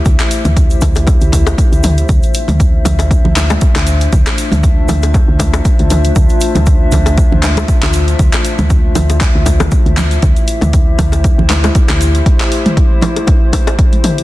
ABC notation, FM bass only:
X:1
M:4/4
L:1/16
Q:"Swing 16ths" 1/4=118
K:Dm
V:1 name="FM bass" clef=bass
D,, z2 D,,3 D,,3 D,,3 z D,,3 | D,, z2 D,,3 D,,3 D,,3 z D,,3 | D,, z2 D,,3 D,,3 D,,3 z D,,3 | D,, z2 D,,3 D,,3 D,,3 z D,,3 |
D,, z2 D,,3 D,,3 D,,3 z D,,3 | D,, z2 D,,3 D,,3 D,,3 z D,,3 | z16 |]